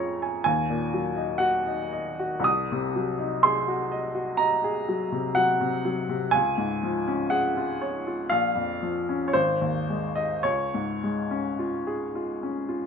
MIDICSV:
0, 0, Header, 1, 2, 480
1, 0, Start_track
1, 0, Key_signature, -5, "major"
1, 0, Tempo, 966184
1, 703, Tempo, 1048951
1, 1183, Time_signature, 4, 2, 24, 8
1, 1183, Tempo, 964630
1, 3103, Tempo, 988468
1, 4063, Tempo, 1030928
1, 4543, Tempo, 1117318
1, 6061, End_track
2, 0, Start_track
2, 0, Title_t, "Upright piano"
2, 0, Program_c, 0, 0
2, 0, Control_c, 0, 64, 127
2, 0, Note_on_c, 0, 41, 60
2, 0, Note_on_c, 0, 49, 49
2, 0, Note_on_c, 0, 53, 45
2, 0, Note_on_c, 0, 61, 53
2, 0, Note_on_c, 0, 65, 55
2, 0, Note_on_c, 0, 68, 46
2, 0, Note_on_c, 0, 73, 57
2, 0, Note_on_c, 0, 82, 74
2, 0, Note_on_c, 0, 84, 89
2, 59, Note_off_c, 0, 65, 0
2, 111, Note_on_c, 0, 80, 48
2, 179, Note_off_c, 0, 73, 0
2, 210, Note_off_c, 0, 41, 0
2, 212, Note_off_c, 0, 80, 0
2, 219, Note_on_c, 0, 80, 89
2, 225, Note_off_c, 0, 82, 0
2, 229, Note_on_c, 0, 39, 66
2, 235, Note_off_c, 0, 53, 0
2, 235, Control_c, 0, 64, 0
2, 236, Note_off_c, 0, 68, 0
2, 238, Note_off_c, 0, 49, 0
2, 239, Note_off_c, 0, 61, 0
2, 239, Note_off_c, 0, 84, 0
2, 303, Control_c, 0, 64, 127
2, 347, Note_on_c, 0, 46, 52
2, 466, Note_on_c, 0, 54, 48
2, 536, Note_off_c, 0, 46, 0
2, 579, Note_on_c, 0, 63, 52
2, 656, Note_off_c, 0, 54, 0
2, 686, Note_on_c, 0, 78, 92
2, 694, Note_on_c, 0, 66, 59
2, 700, Note_off_c, 0, 80, 0
2, 769, Note_off_c, 0, 63, 0
2, 817, Note_on_c, 0, 63, 53
2, 885, Note_off_c, 0, 66, 0
2, 937, Note_on_c, 0, 75, 57
2, 1014, Note_off_c, 0, 63, 0
2, 1060, Note_on_c, 0, 66, 54
2, 1135, Note_off_c, 0, 75, 0
2, 1152, Note_on_c, 0, 36, 59
2, 1166, Note_off_c, 0, 39, 0
2, 1173, Note_on_c, 0, 87, 102
2, 1175, Note_off_c, 0, 78, 0
2, 1182, Note_off_c, 0, 66, 0
2, 1192, Control_c, 0, 64, 0
2, 1263, Control_c, 0, 64, 127
2, 1310, Note_on_c, 0, 48, 55
2, 1429, Note_on_c, 0, 54, 52
2, 1501, Note_off_c, 0, 48, 0
2, 1544, Note_on_c, 0, 63, 57
2, 1617, Note_off_c, 0, 54, 0
2, 1659, Note_off_c, 0, 87, 0
2, 1664, Note_on_c, 0, 84, 97
2, 1670, Note_on_c, 0, 68, 55
2, 1733, Note_off_c, 0, 63, 0
2, 1788, Note_on_c, 0, 66, 58
2, 1856, Note_off_c, 0, 68, 0
2, 1906, Note_on_c, 0, 75, 62
2, 1976, Note_off_c, 0, 66, 0
2, 2021, Note_on_c, 0, 66, 52
2, 2095, Note_off_c, 0, 75, 0
2, 2133, Note_on_c, 0, 82, 98
2, 2140, Note_off_c, 0, 84, 0
2, 2143, Note_on_c, 0, 75, 59
2, 2213, Note_off_c, 0, 66, 0
2, 2266, Note_on_c, 0, 68, 59
2, 2334, Note_off_c, 0, 75, 0
2, 2388, Note_on_c, 0, 54, 53
2, 2456, Note_off_c, 0, 68, 0
2, 2506, Note_on_c, 0, 48, 52
2, 2578, Note_off_c, 0, 54, 0
2, 2618, Note_on_c, 0, 78, 106
2, 2619, Note_off_c, 0, 82, 0
2, 2626, Note_on_c, 0, 54, 58
2, 2697, Note_off_c, 0, 48, 0
2, 2747, Note_on_c, 0, 48, 54
2, 2817, Note_off_c, 0, 54, 0
2, 2868, Note_on_c, 0, 54, 55
2, 2937, Note_off_c, 0, 48, 0
2, 2988, Note_on_c, 0, 48, 51
2, 3058, Note_off_c, 0, 54, 0
2, 3067, Note_off_c, 0, 36, 0
2, 3098, Note_on_c, 0, 80, 103
2, 3102, Note_off_c, 0, 78, 0
2, 3107, Note_off_c, 0, 48, 0
2, 3110, Note_on_c, 0, 37, 65
2, 3112, Control_c, 0, 64, 0
2, 3201, Control_c, 0, 64, 127
2, 3226, Note_on_c, 0, 44, 55
2, 3350, Note_on_c, 0, 53, 54
2, 3415, Note_off_c, 0, 44, 0
2, 3469, Note_on_c, 0, 61, 58
2, 3537, Note_off_c, 0, 53, 0
2, 3577, Note_on_c, 0, 78, 90
2, 3579, Note_off_c, 0, 80, 0
2, 3583, Note_on_c, 0, 68, 57
2, 3657, Note_off_c, 0, 61, 0
2, 3709, Note_on_c, 0, 65, 55
2, 3774, Note_off_c, 0, 68, 0
2, 3828, Note_on_c, 0, 73, 60
2, 3898, Note_off_c, 0, 65, 0
2, 3953, Note_on_c, 0, 65, 50
2, 4018, Note_off_c, 0, 73, 0
2, 4047, Note_off_c, 0, 37, 0
2, 4061, Note_on_c, 0, 77, 94
2, 4062, Note_off_c, 0, 78, 0
2, 4069, Note_off_c, 0, 65, 0
2, 4069, Note_on_c, 0, 34, 65
2, 4070, Control_c, 0, 64, 0
2, 4141, Control_c, 0, 64, 127
2, 4182, Note_on_c, 0, 41, 50
2, 4308, Note_on_c, 0, 53, 49
2, 4373, Note_off_c, 0, 41, 0
2, 4432, Note_on_c, 0, 61, 53
2, 4498, Note_off_c, 0, 53, 0
2, 4510, Note_off_c, 0, 77, 0
2, 4519, Note_on_c, 0, 73, 67
2, 4533, Note_off_c, 0, 34, 0
2, 4544, Note_on_c, 0, 72, 95
2, 4547, Note_off_c, 0, 73, 0
2, 4549, Note_off_c, 0, 61, 0
2, 4549, Note_on_c, 0, 32, 66
2, 4550, Control_c, 0, 64, 0
2, 4628, Control_c, 0, 64, 127
2, 4666, Note_on_c, 0, 39, 49
2, 4788, Note_on_c, 0, 56, 54
2, 4849, Note_off_c, 0, 39, 0
2, 4894, Note_off_c, 0, 72, 0
2, 4897, Note_on_c, 0, 75, 86
2, 4908, Note_on_c, 0, 63, 49
2, 4973, Note_off_c, 0, 56, 0
2, 5004, Note_off_c, 0, 32, 0
2, 5016, Note_on_c, 0, 73, 84
2, 5017, Note_off_c, 0, 75, 0
2, 5021, Note_on_c, 0, 37, 57
2, 5023, Note_off_c, 0, 63, 0
2, 5024, Control_c, 0, 64, 0
2, 5108, Control_c, 0, 64, 127
2, 5149, Note_on_c, 0, 44, 52
2, 5276, Note_on_c, 0, 56, 47
2, 5344, Note_off_c, 0, 44, 0
2, 5393, Note_on_c, 0, 61, 49
2, 5468, Note_off_c, 0, 56, 0
2, 5515, Note_on_c, 0, 65, 49
2, 5587, Note_off_c, 0, 61, 0
2, 5634, Note_on_c, 0, 68, 53
2, 5705, Note_off_c, 0, 65, 0
2, 5756, Note_on_c, 0, 65, 50
2, 5821, Note_off_c, 0, 68, 0
2, 5875, Note_on_c, 0, 61, 44
2, 5941, Note_off_c, 0, 65, 0
2, 5985, Note_on_c, 0, 65, 51
2, 6059, Note_off_c, 0, 61, 0
2, 6061, Note_off_c, 0, 37, 0
2, 6061, Note_off_c, 0, 65, 0
2, 6061, Note_off_c, 0, 73, 0
2, 6061, End_track
0, 0, End_of_file